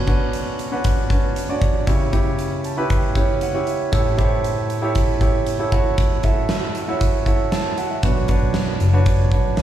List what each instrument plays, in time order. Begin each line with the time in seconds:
Already playing: grand piano B2
0.07 grand piano C#4 D4 F#4 B4, kick, closed hi-hat
0.33 closed hi-hat
0.59 closed hi-hat
0.72 grand piano C#4 D4 F#4 B4
0.84 kick, closed hi-hat
1.10 grand piano C#4 D4 F#4 B4, kick, closed hi-hat
1.36 closed hi-hat
1.49 grand piano C#4 D4 F#4 D5
1.62 kick, closed hi-hat
1.87 grand piano C#3 C#4 E4 G4 C#5, kick, closed hi-hat
2.13 grand piano C#4 E4 G4 C#5, kick, closed hi-hat
2.39 closed hi-hat
2.64 grand piano A5, closed hi-hat
2.77 grand piano C#4 E4 G4 B4
2.90 grand piano G5, kick, closed hi-hat
3.15 grand piano C#4 E4 G4 C#5, kick, closed hi-hat
3.41 grand piano F#5, closed hi-hat
3.54 grand piano C#4 E4 G4 C#5
3.67 grand piano E5, closed hi-hat
3.92 grand piano A2 E4 G4 A4 C#5, kick, closed hi-hat
4.18 grand piano E4 G4 A4 C5, kick, closed hi-hat
4.25 grand piano C#5
4.44 closed hi-hat
4.70 closed hi-hat
4.82 grand piano E4 G4 A4 C#5
4.95 kick, closed hi-hat
5.21 grand piano E4 G4 A4 C#5, kick, closed hi-hat
5.46 closed hi-hat
5.59 grand piano E4 G4 A4 C#5
5.72 grand piano E4 F#4 A4 C#5, kick, closed hi-hat
5.98 kick, closed hi-hat
6.23 grand piano E4 F#4 A4 E5, kick, closed hi-hat
6.49 snare, closed hi-hat
6.75 closed hi-hat
6.88 grand piano E4 F#4 A4 C#5
7.01 kick, closed hi-hat
7.26 grand piano E4 F#4 A4 C#5, kick, closed hi-hat
7.52 grand piano A5, snare, closed hi-hat
7.78 grand piano F#5, closed hi-hat
7.91 grand piano E5
8.03 fingered electric bass B1, grand piano B2 D4 F#4 B4 C#5, kick, closed hi-hat
8.28 grand piano D4 F#4 B4 C#5, kick, closed hi-hat
8.42 fingered electric bass B1
8.54 snare, closed hi-hat
8.80 fingered electric bass F#1, closed hi-hat
8.93 grand piano D4 F#4 B4 C#5
9.06 kick, closed hi-hat
9.31 fingered electric bass B1, grand piano D4 F#4 B4 C#5, kick, closed hi-hat
9.57 fingered electric bass C#2, snare, closed hi-hat